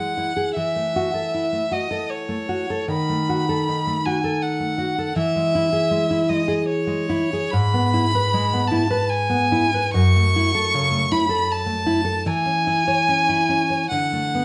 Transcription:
0.00 0.53 E3 soft
0.00 0.29 G#3 soft
0.00 0.17 G#4 soft
0.00 0.55 F#5 medium
0.17 0.36 E4 soft
0.36 0.56 G#4 soft
0.56 2.87 E3 soft
0.56 1.74 E5 medium
0.76 1.07 A3 soft
0.96 1.14 F#4 soft
1.14 1.45 A4 soft
1.34 1.64 E4 soft
1.52 1.83 A3 soft
1.71 1.90 F#4 soft
1.71 2.11 D#5 medium
1.91 2.48 A4 soft
2.10 2.91 C#5 medium
2.29 2.62 A3 soft
2.49 2.70 F#4 soft
2.70 2.91 A4 soft
2.88 5.11 D#3 soft
2.88 4.07 B5 medium
3.09 3.41 A3 soft
3.29 3.49 F#4 soft
3.49 3.79 A4 soft
3.68 3.98 D#4 soft
3.87 4.16 A3 soft
4.05 4.24 F#4 soft
4.05 4.44 G#5 medium
4.24 4.78 A4 soft
4.43 5.17 F#5 medium
4.60 4.90 A3 soft
4.78 4.98 F#4 soft
4.98 5.17 A4 soft
5.16 7.47 E3 medium
5.16 6.30 E5 medium
5.36 5.66 G#3 soft
5.55 5.72 E4 soft
5.73 6.03 G#4 soft
5.91 6.21 G#3 soft
6.11 6.41 E4 soft
6.29 6.60 G#3 soft
6.29 6.67 D#5 medium
6.48 7.09 G#4 soft
6.68 7.51 C#5 medium
6.87 7.21 G#3 soft
7.09 7.33 E4 soft
7.33 7.53 G#4 soft
7.50 9.91 G#2 medium
7.50 8.69 B5 medium
7.74 8.04 B3 soft
7.94 8.14 E4 soft
8.15 8.44 B4 medium
8.34 8.63 G#3 soft
8.53 8.82 B3 soft
8.68 8.90 E4 soft
8.68 9.11 A5 medium
8.90 9.52 B4 soft
9.10 9.93 G#5 medium
9.30 9.64 B3 soft
9.52 9.74 E4 medium
9.74 9.95 B4 soft
9.94 12.24 F#2 medium
9.94 11.13 C#6 loud
10.16 10.47 A3 soft
10.36 10.54 E4 soft
10.55 10.85 A4 medium
10.74 11.05 C#3 medium
10.91 11.23 A3 soft
11.11 11.29 E4 soft
11.11 11.53 B5 medium
11.29 11.86 A4 medium
11.51 12.29 A5 medium
11.66 11.99 A3 soft
11.86 12.04 E4 soft
12.05 12.26 A4 soft
12.26 13.87 E3 medium
12.26 13.90 G#5 loud
12.46 12.79 C#4 soft
12.67 12.87 E4 medium
12.88 13.20 C#5 soft
13.08 13.41 C#4 soft
13.29 13.62 E4 soft
13.49 13.83 C#4 soft
13.70 13.91 C#5 soft
13.91 14.45 D3 medium
13.91 14.45 F#5 medium
14.13 14.45 A3 soft
14.35 14.45 B3 soft

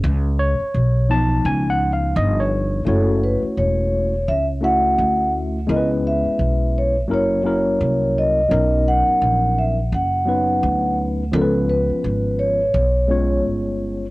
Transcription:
0.03 0.57 C#2 loud
0.39 1.12 C#5 loud
0.60 muted upright bass stroke soft
0.74 1.41 B1 medium
1.09 2.82 F3 medium
1.09 2.82 B3 medium
1.09 2.82 D#4 medium
1.09 1.47 A5 loud
1.45 2.12 C#2 loud
1.45 1.70 G#5 loud
1.70 1.91 F#5 loud
1.93 2.15 F5 medium
2.16 2.83 G1 loud
2.16 2.40 D#5 medium
2.40 2.83 C#5 medium
2.85 3.40 F#1 loud
2.85 4.13 A3 medium
2.85 4.13 C#4 medium
2.85 4.14 E4 medium
2.85 4.14 F#4 medium
2.85 3.20 A4 medium
2.85 4.14 C#5 medium
3.24 3.39 B4 medium
3.43 muted upright bass stroke soft
3.57 4.24 E1 medium
3.57 4.30 C#5 medium
4.28 4.95 C#2 medium
4.28 4.44 E5 loud
4.61 5.57 A3 medium
4.61 5.58 C#4 medium
4.61 5.58 E4 medium
4.61 5.58 F#4 medium
4.61 5.59 E5 medium
4.61 5.30 F#5 medium
4.98 5.65 D2 medium
5.67 6.22 C#2 loud
5.67 6.95 G#3 medium
5.67 6.95 B3 medium
5.67 6.96 C#4 medium
5.67 6.96 E4 medium
5.67 5.77 A#4 medium
5.67 5.86 D#5 medium
5.76 7.00 B4 medium
6.07 6.78 E5 medium
6.25 muted upright bass stroke soft
6.39 7.10 B1 medium
6.78 6.93 C#5 medium
7.08 7.77 F#1 loud
7.08 7.41 F#3 medium
7.08 7.41 A#3 medium
7.08 7.41 C#4 medium
7.08 7.42 E4 medium
7.08 7.42 A#4 medium
7.14 8.21 C#5 medium
7.43 8.40 F#3 medium
7.43 8.40 A#3 medium
7.43 8.40 C#4 medium
7.43 8.41 E4 medium
7.43 8.41 A#4 medium
7.81 8.48 C2 medium
8.18 8.90 D#5 loud
8.49 9.04 B1 loud
8.49 9.77 F#3 medium
8.49 9.77 B3 medium
8.49 9.78 C#4 medium
8.49 9.78 D#4 medium
8.49 9.79 A#4 medium
8.88 9.60 F#5 loud
9.08 muted upright bass stroke soft
9.21 9.88 A#1 medium
9.58 9.74 E5 medium
9.92 10.59 F#1 medium
9.92 10.95 F#5 medium
10.25 11.22 F#3 medium
10.25 11.22 B3 medium
10.25 11.23 C#4 medium
10.25 11.23 D#4 medium
10.25 11.23 B4 medium
10.63 11.30 D2 loud
11.32 11.86 C#2 loud
11.32 12.60 F3 medium
11.32 12.60 B3 medium
11.32 12.61 C#4 medium
11.32 12.61 F4 medium
11.32 11.51 A4 medium
11.32 11.42 A#4 medium
11.42 12.65 B4 medium
11.70 12.42 B4 medium
11.90 muted upright bass stroke soft
12.04 12.71 G#1 medium
12.39 13.41 C#5 medium
12.74 13.45 B1 loud
13.08 14.04 G#3 medium
13.08 14.05 B3 medium
13.08 14.05 C#4 medium
13.08 14.05 F4 medium
13.08 14.06 C#5 medium
13.45 14.11 G1 medium

